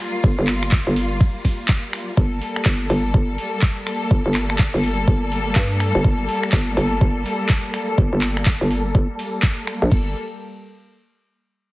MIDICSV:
0, 0, Header, 1, 4, 480
1, 0, Start_track
1, 0, Key_signature, -2, "minor"
1, 0, Tempo, 483871
1, 236, Time_signature, 4, 2, 24, 8
1, 11627, End_track
2, 0, Start_track
2, 0, Title_t, "String section"
2, 0, Program_c, 0, 48
2, 0, Note_on_c, 0, 55, 87
2, 0, Note_on_c, 0, 58, 78
2, 0, Note_on_c, 0, 65, 96
2, 2117, Note_off_c, 0, 55, 0
2, 2117, Note_off_c, 0, 58, 0
2, 2147, Note_off_c, 0, 65, 0
2, 2157, Note_on_c, 0, 55, 85
2, 2157, Note_on_c, 0, 58, 78
2, 2157, Note_on_c, 0, 69, 94
2, 9797, Note_off_c, 0, 55, 0
2, 9797, Note_off_c, 0, 58, 0
2, 9797, Note_off_c, 0, 69, 0
2, 9835, Note_on_c, 0, 55, 72
2, 9836, Note_on_c, 0, 58, 69
2, 9836, Note_on_c, 0, 69, 80
2, 10059, Note_off_c, 0, 55, 0
2, 10059, Note_off_c, 0, 58, 0
2, 10059, Note_off_c, 0, 69, 0
2, 11627, End_track
3, 0, Start_track
3, 0, Title_t, "FM bass"
3, 0, Program_c, 1, 39
3, 236, Note_on_c, 1, 31, 98
3, 359, Note_off_c, 1, 31, 0
3, 383, Note_on_c, 1, 31, 102
3, 840, Note_off_c, 1, 31, 0
3, 863, Note_on_c, 1, 31, 96
3, 1181, Note_off_c, 1, 31, 0
3, 2156, Note_on_c, 1, 31, 96
3, 2381, Note_off_c, 1, 31, 0
3, 2636, Note_on_c, 1, 31, 95
3, 2861, Note_off_c, 1, 31, 0
3, 2876, Note_on_c, 1, 31, 99
3, 3101, Note_off_c, 1, 31, 0
3, 3116, Note_on_c, 1, 31, 96
3, 3341, Note_off_c, 1, 31, 0
3, 4076, Note_on_c, 1, 31, 93
3, 4199, Note_off_c, 1, 31, 0
3, 4223, Note_on_c, 1, 31, 97
3, 4680, Note_off_c, 1, 31, 0
3, 4703, Note_on_c, 1, 31, 99
3, 5022, Note_off_c, 1, 31, 0
3, 5036, Note_on_c, 1, 31, 99
3, 5501, Note_off_c, 1, 31, 0
3, 5516, Note_on_c, 1, 43, 95
3, 5879, Note_off_c, 1, 43, 0
3, 5903, Note_on_c, 1, 31, 100
3, 5981, Note_off_c, 1, 31, 0
3, 5996, Note_on_c, 1, 31, 94
3, 6221, Note_off_c, 1, 31, 0
3, 6476, Note_on_c, 1, 31, 100
3, 6701, Note_off_c, 1, 31, 0
3, 6716, Note_on_c, 1, 31, 101
3, 6941, Note_off_c, 1, 31, 0
3, 6956, Note_on_c, 1, 31, 98
3, 7181, Note_off_c, 1, 31, 0
3, 7916, Note_on_c, 1, 31, 97
3, 8039, Note_off_c, 1, 31, 0
3, 8062, Note_on_c, 1, 31, 99
3, 8519, Note_off_c, 1, 31, 0
3, 8543, Note_on_c, 1, 31, 95
3, 8862, Note_off_c, 1, 31, 0
3, 8876, Note_on_c, 1, 31, 97
3, 8999, Note_off_c, 1, 31, 0
3, 9743, Note_on_c, 1, 34, 99
3, 9821, Note_off_c, 1, 34, 0
3, 9836, Note_on_c, 1, 31, 98
3, 10060, Note_off_c, 1, 31, 0
3, 11627, End_track
4, 0, Start_track
4, 0, Title_t, "Drums"
4, 0, Note_on_c, 9, 26, 70
4, 0, Note_on_c, 9, 46, 102
4, 0, Note_on_c, 9, 51, 83
4, 95, Note_off_c, 9, 26, 0
4, 95, Note_off_c, 9, 46, 0
4, 95, Note_off_c, 9, 51, 0
4, 236, Note_on_c, 9, 36, 118
4, 236, Note_on_c, 9, 51, 59
4, 335, Note_off_c, 9, 36, 0
4, 335, Note_off_c, 9, 51, 0
4, 470, Note_on_c, 9, 39, 63
4, 476, Note_on_c, 9, 26, 63
4, 476, Note_on_c, 9, 46, 107
4, 476, Note_on_c, 9, 51, 85
4, 569, Note_off_c, 9, 39, 0
4, 575, Note_off_c, 9, 26, 0
4, 575, Note_off_c, 9, 46, 0
4, 575, Note_off_c, 9, 51, 0
4, 622, Note_on_c, 9, 26, 69
4, 710, Note_on_c, 9, 39, 127
4, 716, Note_on_c, 9, 36, 112
4, 716, Note_on_c, 9, 51, 63
4, 721, Note_off_c, 9, 26, 0
4, 810, Note_off_c, 9, 39, 0
4, 815, Note_off_c, 9, 36, 0
4, 815, Note_off_c, 9, 51, 0
4, 956, Note_on_c, 9, 46, 110
4, 956, Note_on_c, 9, 51, 88
4, 1055, Note_off_c, 9, 46, 0
4, 1055, Note_off_c, 9, 51, 0
4, 1196, Note_on_c, 9, 36, 117
4, 1196, Note_on_c, 9, 51, 60
4, 1295, Note_off_c, 9, 36, 0
4, 1296, Note_off_c, 9, 51, 0
4, 1436, Note_on_c, 9, 36, 60
4, 1436, Note_on_c, 9, 46, 109
4, 1436, Note_on_c, 9, 51, 85
4, 1535, Note_off_c, 9, 36, 0
4, 1535, Note_off_c, 9, 46, 0
4, 1535, Note_off_c, 9, 51, 0
4, 1671, Note_on_c, 9, 39, 124
4, 1676, Note_on_c, 9, 36, 112
4, 1677, Note_on_c, 9, 51, 60
4, 1770, Note_off_c, 9, 39, 0
4, 1775, Note_off_c, 9, 36, 0
4, 1776, Note_off_c, 9, 51, 0
4, 1917, Note_on_c, 9, 26, 67
4, 1917, Note_on_c, 9, 46, 104
4, 1917, Note_on_c, 9, 51, 84
4, 2016, Note_off_c, 9, 26, 0
4, 2016, Note_off_c, 9, 46, 0
4, 2016, Note_off_c, 9, 51, 0
4, 2156, Note_on_c, 9, 36, 118
4, 2255, Note_off_c, 9, 36, 0
4, 2396, Note_on_c, 9, 46, 105
4, 2495, Note_off_c, 9, 46, 0
4, 2543, Note_on_c, 9, 26, 64
4, 2630, Note_on_c, 9, 39, 127
4, 2636, Note_on_c, 9, 36, 105
4, 2642, Note_off_c, 9, 26, 0
4, 2730, Note_off_c, 9, 39, 0
4, 2735, Note_off_c, 9, 36, 0
4, 2876, Note_on_c, 9, 46, 110
4, 2975, Note_off_c, 9, 46, 0
4, 3116, Note_on_c, 9, 36, 118
4, 3215, Note_off_c, 9, 36, 0
4, 3356, Note_on_c, 9, 46, 106
4, 3455, Note_off_c, 9, 46, 0
4, 3590, Note_on_c, 9, 39, 122
4, 3596, Note_on_c, 9, 36, 104
4, 3689, Note_off_c, 9, 39, 0
4, 3695, Note_off_c, 9, 36, 0
4, 3836, Note_on_c, 9, 26, 65
4, 3836, Note_on_c, 9, 46, 106
4, 3935, Note_off_c, 9, 26, 0
4, 3935, Note_off_c, 9, 46, 0
4, 4076, Note_on_c, 9, 36, 125
4, 4175, Note_off_c, 9, 36, 0
4, 4311, Note_on_c, 9, 39, 64
4, 4316, Note_on_c, 9, 26, 59
4, 4316, Note_on_c, 9, 46, 107
4, 4410, Note_off_c, 9, 39, 0
4, 4415, Note_off_c, 9, 26, 0
4, 4415, Note_off_c, 9, 46, 0
4, 4463, Note_on_c, 9, 26, 62
4, 4550, Note_on_c, 9, 39, 125
4, 4556, Note_on_c, 9, 36, 109
4, 4562, Note_off_c, 9, 26, 0
4, 4649, Note_off_c, 9, 39, 0
4, 4655, Note_off_c, 9, 36, 0
4, 4796, Note_on_c, 9, 46, 113
4, 4895, Note_off_c, 9, 46, 0
4, 5036, Note_on_c, 9, 36, 123
4, 5135, Note_off_c, 9, 36, 0
4, 5276, Note_on_c, 9, 46, 111
4, 5375, Note_off_c, 9, 46, 0
4, 5511, Note_on_c, 9, 39, 125
4, 5516, Note_on_c, 9, 36, 106
4, 5610, Note_off_c, 9, 39, 0
4, 5615, Note_off_c, 9, 36, 0
4, 5756, Note_on_c, 9, 26, 64
4, 5756, Note_on_c, 9, 46, 112
4, 5855, Note_off_c, 9, 26, 0
4, 5855, Note_off_c, 9, 46, 0
4, 5996, Note_on_c, 9, 36, 127
4, 6095, Note_off_c, 9, 36, 0
4, 6236, Note_on_c, 9, 46, 112
4, 6336, Note_off_c, 9, 46, 0
4, 6383, Note_on_c, 9, 26, 61
4, 6471, Note_on_c, 9, 39, 122
4, 6476, Note_on_c, 9, 36, 112
4, 6482, Note_off_c, 9, 26, 0
4, 6570, Note_off_c, 9, 39, 0
4, 6575, Note_off_c, 9, 36, 0
4, 6716, Note_on_c, 9, 46, 118
4, 6816, Note_off_c, 9, 46, 0
4, 6956, Note_on_c, 9, 36, 124
4, 7055, Note_off_c, 9, 36, 0
4, 7197, Note_on_c, 9, 46, 110
4, 7296, Note_off_c, 9, 46, 0
4, 7431, Note_on_c, 9, 39, 121
4, 7436, Note_on_c, 9, 36, 106
4, 7530, Note_off_c, 9, 39, 0
4, 7536, Note_off_c, 9, 36, 0
4, 7676, Note_on_c, 9, 26, 63
4, 7676, Note_on_c, 9, 46, 109
4, 7776, Note_off_c, 9, 26, 0
4, 7776, Note_off_c, 9, 46, 0
4, 7916, Note_on_c, 9, 36, 121
4, 8016, Note_off_c, 9, 36, 0
4, 8151, Note_on_c, 9, 39, 60
4, 8157, Note_on_c, 9, 26, 58
4, 8157, Note_on_c, 9, 46, 110
4, 8250, Note_off_c, 9, 39, 0
4, 8256, Note_off_c, 9, 26, 0
4, 8256, Note_off_c, 9, 46, 0
4, 8303, Note_on_c, 9, 26, 66
4, 8391, Note_on_c, 9, 39, 124
4, 8396, Note_on_c, 9, 36, 105
4, 8402, Note_off_c, 9, 26, 0
4, 8490, Note_off_c, 9, 39, 0
4, 8496, Note_off_c, 9, 36, 0
4, 8637, Note_on_c, 9, 46, 114
4, 8736, Note_off_c, 9, 46, 0
4, 8876, Note_on_c, 9, 36, 123
4, 8976, Note_off_c, 9, 36, 0
4, 9116, Note_on_c, 9, 46, 114
4, 9216, Note_off_c, 9, 46, 0
4, 9351, Note_on_c, 9, 39, 117
4, 9356, Note_on_c, 9, 36, 106
4, 9450, Note_off_c, 9, 39, 0
4, 9455, Note_off_c, 9, 36, 0
4, 9597, Note_on_c, 9, 26, 63
4, 9597, Note_on_c, 9, 46, 108
4, 9696, Note_off_c, 9, 26, 0
4, 9696, Note_off_c, 9, 46, 0
4, 9836, Note_on_c, 9, 36, 114
4, 9836, Note_on_c, 9, 49, 85
4, 9936, Note_off_c, 9, 36, 0
4, 9936, Note_off_c, 9, 49, 0
4, 11627, End_track
0, 0, End_of_file